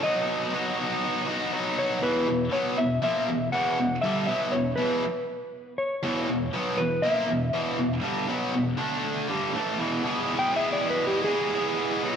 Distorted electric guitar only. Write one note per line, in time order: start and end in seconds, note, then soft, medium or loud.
0.02 0.50 B2 loud
0.02 0.52 F#3 loud
0.02 0.52 B3 loud
0.02 0.53 D#4 loud
0.02 0.54 F#4 loud
0.52 1.02 B2 medium
0.52 1.03 F#3 medium
0.52 0.80 B3 medium
0.52 0.79 D#4 medium
0.52 0.77 F#4 loud
0.78 1.29 B3 medium
0.78 1.27 D#4 medium
0.78 1.25 F#4 medium
1.27 1.51 B3 medium
1.27 1.52 D#4 medium
1.27 1.54 F#4 medium
1.51 2.00 F#3 medium
1.51 2.01 B3 medium
1.51 2.02 D#4 medium
1.51 2.02 F#4 medium
2.01 2.26 E2 loud
2.01 2.26 B2 medium
2.01 2.27 E3 loud
2.28 2.48 E2 medium
2.28 2.48 B2 medium
2.52 2.77 B2 medium
2.52 2.77 F#3 medium
2.52 2.77 B3 medium
2.78 2.98 E2 medium
2.78 2.98 B2 medium
3.02 3.27 A#2 medium
3.02 3.27 F3 medium
3.02 3.27 A#3 medium
3.28 3.48 E2 medium
3.28 3.48 B2 medium
3.52 3.77 E2 medium
3.52 3.78 B2 medium
3.52 3.78 E3 medium
3.78 3.98 E2 medium
3.78 3.98 B2 medium
4.04 4.28 G2 medium
4.04 4.27 D3 medium
4.04 4.28 G3 loud
4.27 4.52 B2 loud
4.27 4.52 F#3 loud
4.27 4.53 B3 loud
4.53 4.73 E2 medium
4.53 4.73 B2 medium
4.77 5.02 E2 medium
4.77 5.03 B2 medium
4.77 5.03 E3 medium
6.03 6.28 E2 loud
6.03 6.28 B2 loud
6.03 6.28 E3 loud
6.29 6.49 E2 medium
6.29 6.49 B2 medium
6.54 6.78 B2 medium
6.54 6.78 F#3 medium
6.54 6.78 B3 medium
6.79 6.99 E2 medium
6.79 6.99 B2 medium
7.03 7.28 A#2 medium
7.03 7.28 F3 loud
7.03 7.28 A#3 loud
7.28 7.49 E2 medium
7.28 7.49 B2 medium
7.53 7.77 E2 medium
7.53 7.77 B2 medium
7.53 7.78 E3 loud
7.78 7.98 E2 medium
7.78 7.99 B2 medium
8.01 8.27 G2 loud
8.01 8.27 D3 medium
8.01 8.28 G3 loud
8.28 8.53 B2 medium
8.28 8.53 F#3 medium
8.28 8.53 B3 medium
8.54 8.74 E2 medium
8.54 8.74 B2 medium
8.77 9.27 D3 medium
8.77 9.28 A3 medium
8.77 9.28 D4 medium
9.28 9.53 G2 medium
9.28 9.53 D3 medium
9.28 9.53 G3 loud
9.54 9.78 A2 medium
9.54 9.78 E3 medium
9.54 9.79 A3 loud
9.78 10.03 E2 medium
9.78 10.03 B2 medium
9.78 10.03 E3 loud
10.04 10.51 E2 medium
10.04 10.53 B2 medium
10.04 10.53 E3 medium
10.04 10.54 G#3 medium
10.04 10.55 B3 loud
10.04 10.54 G#4 loud
10.53 11.03 E2 medium
10.53 11.04 B2 medium
10.53 10.79 E3 medium
10.53 10.79 G#3 medium
10.53 10.78 B3 loud
10.53 10.76 G#4 loud
10.77 11.29 E3 medium
10.77 11.28 G#3 medium
10.77 11.27 B3 medium
10.77 11.25 G#4 medium
11.27 11.52 E3 medium
11.27 11.53 G#3 medium
11.27 11.54 B3 medium
11.27 11.55 G#4 medium
11.53 12.02 E3 medium
11.53 12.03 G#3 medium
11.53 12.03 B3 medium
11.53 12.04 G#4 medium
12.03 12.16 B2 loud
12.03 12.16 F#3 loud
12.03 12.16 B3 loud
12.03 12.16 D#4 medium
12.03 12.16 F#4 loud